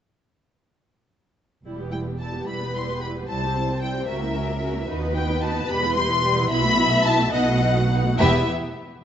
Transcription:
1.65 2.38 E1 soft
1.65 2.38 E2 soft
1.65 1.78 G3 soft
1.65 1.78 E4 soft
1.79 1.93 B3 soft
1.79 1.93 G4 soft
1.92 2.07 G3 soft
1.92 2.06 E4 soft
1.92 2.00 G5 soft
2.06 2.20 B3 soft
2.06 2.20 G4 soft
2.19 2.33 G3 soft
2.19 2.33 E4 soft
2.19 2.47 A5 medium
2.34 2.48 B3 soft
2.34 2.48 G4 soft
2.47 3.19 E1 soft
2.47 3.19 E2 soft
2.47 2.61 G3 soft
2.47 2.61 E4 soft
2.47 3.24 B4 soft
2.47 2.74 B5 medium
2.62 2.75 B3 soft
2.62 2.75 G4 soft
2.75 2.88 G3 soft
2.75 2.88 E4 soft
2.75 3.02 C6 medium
2.89 3.02 B3 soft
2.89 3.02 G4 soft
3.02 3.16 G3 soft
3.02 3.16 E4 soft
3.02 3.10 B5 medium
3.16 3.29 B3 soft
3.16 3.29 G4 soft
3.28 3.99 C2 medium
3.28 4.00 C2 soft
3.28 3.41 G3 soft
3.28 3.41 E4 soft
3.28 4.07 C5 soft
3.28 3.81 A5 medium
3.43 3.56 C4 soft
3.43 3.56 G4 soft
3.56 3.69 G3 soft
3.56 3.69 E4 soft
3.69 3.82 C4 soft
3.69 3.82 G4 soft
3.81 3.95 G3 soft
3.81 3.95 E4 soft
3.81 4.08 G5 medium
3.96 4.09 C4 soft
3.96 4.09 G4 soft
4.07 4.79 C#2 medium
4.07 4.21 C#4 soft
4.07 4.21 F#4 soft
4.07 4.88 A#4 medium
4.07 4.86 E5 medium
4.21 4.35 A#3 soft
4.21 4.35 E4 soft
4.34 4.48 C#4 soft
4.34 4.48 F#4 soft
4.48 4.62 A#3 soft
4.48 4.61 E4 soft
4.62 4.74 C#4 soft
4.62 4.74 F#4 soft
4.74 4.88 A#3 soft
4.74 4.88 E4 soft
4.87 5.59 D#2 medium
4.87 5.00 D#4 medium
4.87 5.00 F#4 medium
4.87 6.47 B4 medium
5.01 5.14 B3 soft
5.01 5.13 D#4 soft
5.14 5.27 D#4 medium
5.14 5.28 F#4 soft
5.14 5.40 G5 medium
5.28 5.42 B3 soft
5.28 5.40 D#4 medium
5.41 5.53 D#4 medium
5.41 5.54 F#4 soft
5.41 5.68 A5 medium
5.55 5.68 B3 medium
5.55 5.68 D#4 medium
5.68 6.40 E1 medium
5.68 6.40 E2 medium
5.68 5.81 G3 medium
5.68 5.81 G4 medium
5.68 5.96 B5 loud
5.82 5.95 B3 medium
5.82 5.95 E4 medium
5.95 6.09 G3 medium
5.95 6.09 G4 medium
5.95 6.48 C6 loud
6.09 6.23 B3 medium
6.09 6.23 E4 medium
6.22 6.35 G3 medium
6.22 6.35 G4 medium
6.36 6.49 B3 medium
6.36 6.49 E4 medium
6.49 7.23 B1 medium
6.49 7.23 B2 medium
6.49 6.63 B3 medium
6.49 6.63 E4 medium
6.49 7.31 E5 medium
6.49 7.04 B5 loud
6.63 6.77 A3 medium
6.63 6.77 F#4 medium
6.77 6.92 B3 medium
6.77 6.91 E4 medium
6.91 7.05 A3 medium
6.91 7.05 F#4 medium
7.05 7.18 B3 medium
7.05 7.18 E4 medium
7.05 7.33 A5 loud
7.20 7.34 A3 medium
7.20 7.34 F#4 medium
7.33 8.09 B1 medium
7.33 8.09 B2 medium
7.33 7.46 B3 medium
7.33 7.46 D#4 medium
7.33 7.75 D#5 medium
7.33 8.17 F#5 medium
7.48 7.62 A3 medium
7.48 7.62 F#4 medium
7.62 7.76 B3 medium
7.62 7.76 D#4 medium
7.76 7.90 A3 medium
7.76 7.90 F#4 medium
7.90 8.04 B3 medium
7.90 8.04 D#4 medium
8.04 8.19 A3 medium
8.04 8.19 F#4 medium
8.18 8.50 E1 medium
8.18 8.50 E2 medium
8.18 8.50 B3 medium
8.18 8.50 E4 medium
8.18 8.50 G4 medium
8.18 8.50 B4 medium
8.18 8.50 E5 loud

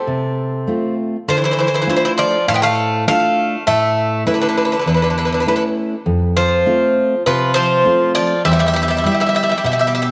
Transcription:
0.00 0.94 C3 medium
0.00 0.93 A4 medium
0.07 0.65 C3 medium
0.67 1.15 A3 soft
0.67 1.16 C4 soft
0.67 1.16 F4 medium
1.28 1.86 D3 medium
1.28 1.35 F3 medium
1.28 1.36 C5 medium
1.37 1.43 E3 soft
1.37 1.43 C5 soft
1.44 1.50 E3 medium
1.44 1.51 C5 medium
1.51 1.57 E3 medium
1.51 1.59 C5 medium
1.58 1.65 E3 medium
1.58 1.66 C5 medium
1.67 1.73 E3 soft
1.67 1.74 C5 medium
1.74 1.80 E3 soft
1.74 1.81 C5 medium
1.81 1.88 E3 soft
1.81 1.88 C5 medium
1.87 1.96 E3 medium
1.87 2.35 A3 medium
1.87 2.35 D4 soft
1.87 2.35 F4 medium
1.87 1.95 C5 medium
1.96 2.03 E3 soft
1.96 2.03 C5 medium
2.05 2.11 E3 medium
2.05 2.11 C5 medium
2.18 2.45 F3 medium
2.18 2.48 D5 loud
2.48 3.05 A2 medium
2.48 2.54 A3 medium
2.48 2.54 F5 loud
2.54 2.61 B3 medium
2.54 2.62 G5 medium
2.62 3.04 A3 medium
2.62 3.05 F5 loud
3.07 3.55 A3 soft
3.07 3.63 A3 medium
3.07 3.55 D4 soft
3.07 3.55 F4 soft
3.07 3.63 F5 loud
3.67 4.25 A2 medium
3.67 4.23 A3 medium
3.67 4.26 E5 medium
4.26 4.34 E3 medium
4.26 4.74 A3 soft
4.26 4.74 C#4 soft
4.26 4.75 E4 medium
4.26 4.33 B4 medium
4.34 4.41 D3 soft
4.34 4.40 B4 soft
4.41 4.48 D3 medium
4.41 4.47 B4 medium
4.49 4.56 D3 soft
4.49 4.56 B4 soft
4.57 4.63 D3 soft
4.57 4.64 B4 medium
4.65 4.72 D3 soft
4.65 4.71 B4 medium
4.72 4.80 D3 soft
4.72 4.78 B4 medium
4.79 4.87 D3 soft
4.79 4.86 B4 soft
4.86 5.44 E2 medium
4.86 4.95 D3 soft
4.86 4.93 B4 soft
4.94 5.02 D3 soft
4.94 5.01 B4 soft
5.02 5.09 D3 soft
5.02 5.09 B4 medium
5.10 5.17 D3 soft
5.10 5.16 B4 soft
5.18 5.25 D3 soft
5.18 5.24 B4 soft
5.25 5.33 D3 soft
5.25 5.31 B4 soft
5.32 5.40 D3 soft
5.32 5.39 B4 soft
5.40 5.47 D3 soft
5.40 5.47 B4 soft
5.46 5.55 D3 soft
5.46 5.94 A3 soft
5.46 5.94 C#4 soft
5.46 5.95 E4 medium
5.46 5.55 B4 medium
5.56 5.63 D3 soft
5.56 5.62 B4 medium
6.06 6.64 F2 medium
6.37 7.22 F3 medium
6.37 7.22 C5 medium
6.66 7.14 A3 medium
6.66 7.14 C4 medium
6.66 7.14 F4 medium
7.26 7.84 C3 medium
7.26 7.54 F3 medium
7.26 7.54 B4 medium
7.54 8.11 F3 medium
7.54 8.15 C5 loud
7.85 8.33 A3 soft
7.85 8.33 C4 soft
7.85 8.33 F4 medium
8.15 8.43 F3 medium
8.15 8.43 D5 medium
8.45 9.03 E2 medium
8.45 8.50 G3 medium
8.45 8.52 E5 medium
8.52 8.58 G3 medium
8.52 8.59 E5 medium
8.59 8.65 G3 medium
8.59 8.67 E5 medium
8.66 8.72 G3 medium
8.66 8.75 E5 medium
8.74 8.81 G3 medium
8.74 8.82 E5 medium
8.82 8.87 G3 soft
8.82 8.89 E5 medium
8.88 8.96 G3 medium
8.88 8.97 E5 medium
8.97 9.03 G3 soft
8.97 9.05 E5 medium
9.04 9.10 G3 soft
9.04 9.52 G3 soft
9.04 9.53 B3 soft
9.04 9.53 E4 medium
9.04 9.13 E5 medium
9.12 9.19 G3 soft
9.12 9.20 E5 medium
9.20 9.25 G3 medium
9.20 9.28 E5 medium
9.26 9.33 G3 soft
9.26 9.35 E5 medium
9.35 9.41 G3 medium
9.35 9.42 E5 medium
9.43 9.48 G3 soft
9.43 9.50 E5 medium
9.49 9.56 G3 medium
9.49 9.57 E5 medium
9.58 9.63 G3 soft
9.58 9.65 E5 medium
9.64 10.11 B2 medium
9.64 9.70 G3 medium
9.64 9.72 E5 medium
9.72 9.78 G3 medium
9.72 9.79 E5 medium
9.79 9.86 G3 medium
9.79 9.87 E5 medium
9.87 9.93 G3 medium
9.87 9.93 E5 medium
9.95 10.01 G3 medium
9.95 10.01 E5 medium
10.02 10.09 G3 medium
10.02 10.10 E5 medium

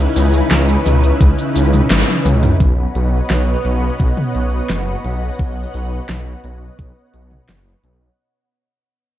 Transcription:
0.00 2.56 C#3 medium
0.00 2.56 C#4 medium
0.00 2.56 D#4 medium
0.00 2.56 E4 medium
0.00 2.56 B4 medium
0.16 0.42 C#2 medium
0.16 closed hi-hat medium
0.16 shaker medium
0.33 shaker soft
0.51 0.77 C#2 loud
0.51 snare loud
0.51 clap loud
0.51 closed hi-hat medium
0.51 shaker soft
0.68 shaker soft
0.86 1.12 C#2 medium
0.86 closed hi-hat medium
0.86 mid tom medium
0.86 shaker medium
1.03 shaker soft
1.21 1.34 C#2 medium
1.21 kick loud
1.21 closed hi-hat loud
1.21 shaker soft
1.38 shaker soft
1.56 1.82 C#2 medium
1.56 closed hi-hat medium
1.56 shaker medium
1.73 mid tom medium
1.73 shaker soft
1.91 2.04 G#1 medium
1.91 snare loud
1.91 clap loud
1.91 closed hi-hat loud
1.91 high tom medium
1.91 shaker soft
2.08 high tom medium
2.25 2.51 C#2 medium
2.25 open hi-hat medium
2.25 mid tom medium
2.25 shaker medium
2.43 mid tom medium
2.43 shaker soft
2.60 2.86 B1 medium
2.60 8.14 B3 medium
2.60 8.14 B4 medium
2.60 8.14 C#5 medium
2.60 8.14 D#5 medium
2.60 8.14 F#5 medium
2.60 kick loud
2.60 closed hi-hat medium
2.95 3.21 B1 medium
2.95 closed hi-hat medium
3.30 3.56 B1 loud
3.30 snare loud
3.30 closed hi-hat medium
3.65 3.91 B1 medium
3.65 closed hi-hat medium
4.00 4.13 B1 medium
4.00 kick loud
4.00 closed hi-hat loud
4.17 mid tom medium
4.35 4.61 B1 medium
4.35 closed hi-hat medium
4.70 4.96 F#1 medium
4.70 snare loud
4.70 closed hi-hat medium
5.04 5.30 B1 medium
5.04 closed hi-hat medium
5.39 5.65 B1 loud
5.39 kick loud
5.39 closed hi-hat medium
5.74 6.00 B1 medium
5.74 closed hi-hat medium
6.09 6.35 B1 loud
6.09 snare loud
6.09 closed hi-hat medium
6.44 6.70 B1 medium
6.44 closed hi-hat medium
6.79 6.92 B1 medium
6.79 kick loud
6.79 closed hi-hat medium
7.14 7.40 B1 medium
7.14 closed hi-hat medium
7.31 mid tom medium
7.48 7.75 F#1 medium
7.48 snare loud
7.48 closed hi-hat medium
7.83 8.09 B1 medium
7.83 closed hi-hat medium

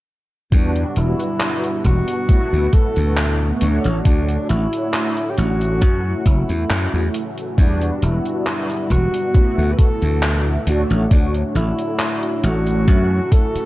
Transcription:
0.51 0.83 E2 medium
0.51 2.20 G3 medium
0.51 2.20 B3 medium
0.51 0.99 D4 medium
0.51 2.21 D4 medium
0.51 2.21 F#4 medium
0.51 kick loud
0.51 closed hi-hat medium
0.76 closed hi-hat soft
0.96 1.13 E1 medium
0.96 1.85 E4 medium
0.96 closed hi-hat medium
1.20 closed hi-hat soft
1.40 clap loud
1.40 closed hi-hat medium
1.64 closed hi-hat soft
1.84 2.01 E1 medium
1.84 2.75 F#4 loud
1.84 kick medium
1.84 closed hi-hat medium
2.08 closed hi-hat medium
2.27 3.52 A3 medium
2.27 3.53 B3 medium
2.27 3.53 E4 medium
2.27 3.54 F#4 medium
2.27 muted slap bass stroke soft
2.27 kick loud
2.27 closed hi-hat medium
2.53 2.67 D2 medium
2.73 3.61 A4 loud
2.73 kick loud
2.73 closed hi-hat medium
2.96 3.51 D2 medium
2.96 closed hi-hat soft
3.17 clap loud
3.17 closed hi-hat medium
3.60 3.77 D2 medium
3.60 5.73 A3 medium
3.60 5.74 D4 medium
3.60 5.74 F#4 medium
3.60 5.73 C#5 medium
3.60 closed hi-hat medium
3.84 3.99 A1 medium
3.84 closed hi-hat soft
4.05 4.36 D2 medium
4.05 4.47 D4 medium
4.05 kick loud
4.05 closed hi-hat medium
4.29 closed hi-hat soft
4.49 4.66 A1 medium
4.49 5.31 E4 loud
4.49 closed hi-hat medium
4.73 closed hi-hat soft
4.94 clap loud
4.94 closed hi-hat medium
5.17 closed hi-hat soft
5.30 5.39 G4 medium
5.38 5.82 A1 medium
5.38 6.25 F#4 loud
5.38 closed hi-hat medium
5.61 closed hi-hat soft
5.80 6.13 F#2 medium
5.80 7.49 A3 medium
5.80 7.50 C#4 medium
5.80 7.50 E4 medium
5.80 7.51 F#4 medium
5.80 kick loud
5.80 closed hi-hat medium
6.26 6.42 F#1 medium
6.26 7.10 E4 medium
6.26 kick loud
6.26 closed hi-hat medium
6.49 6.64 E2 medium
6.49 closed hi-hat soft
6.70 6.86 F#2 medium
6.70 clap loud
6.70 closed hi-hat medium
6.94 7.08 E2 medium
7.14 closed hi-hat medium
7.38 closed hi-hat medium
7.57 7.89 E2 medium
7.57 9.26 G3 medium
7.57 9.26 B3 medium
7.57 9.27 D4 medium
7.57 8.06 D4 medium
7.57 9.27 F#4 medium
7.57 kick loud
7.57 closed hi-hat medium
7.82 closed hi-hat soft
8.02 8.18 E1 medium
8.02 8.91 E4 medium
8.02 closed hi-hat medium
8.26 closed hi-hat soft
8.47 clap loud
8.47 closed hi-hat medium
8.70 closed hi-hat soft
8.90 9.07 E1 medium
8.90 9.74 F#4 loud
8.90 kick medium
8.90 closed hi-hat medium
9.14 closed hi-hat soft
9.33 10.58 A3 medium
9.33 10.59 B3 medium
9.33 10.59 E4 medium
9.33 10.59 F#4 medium
9.33 muted slap bass stroke soft
9.33 kick loud
9.33 closed hi-hat medium
9.58 9.72 D2 medium
9.72 9.80 B4 medium
9.78 10.67 A4 loud
9.78 kick loud
9.78 closed hi-hat medium
10.02 10.57 D2 medium
10.02 closed hi-hat soft
10.23 clap loud
10.23 closed hi-hat medium
10.66 10.83 D2 medium
10.66 12.79 A3 medium
10.66 12.80 D4 medium
10.66 12.80 F#4 loud
10.66 12.79 C#5 medium
10.66 closed hi-hat medium
10.90 11.05 A1 medium
10.90 closed hi-hat soft
11.11 11.42 D2 medium
11.11 11.27 D4 medium
11.11 kick loud
11.11 closed hi-hat medium
11.34 closed hi-hat soft
11.55 11.71 A1 medium
11.55 12.46 E4 medium
11.55 closed hi-hat medium
11.79 closed hi-hat soft
11.99 clap loud
11.99 closed hi-hat medium
12.23 closed hi-hat soft
12.43 12.88 A1 medium
12.43 13.34 F#4 loud
12.43 closed hi-hat medium
12.67 closed hi-hat soft
12.86 13.19 F#2 medium
12.86 13.65 A3 medium
12.86 13.65 C#4 medium
12.86 13.65 E4 medium
12.86 13.65 F#4 medium
12.86 kick loud
12.86 closed hi-hat medium
13.32 13.65 A4 loud
13.32 kick loud
13.32 closed hi-hat medium
13.55 muted slap bass stroke soft
13.55 closed hi-hat soft

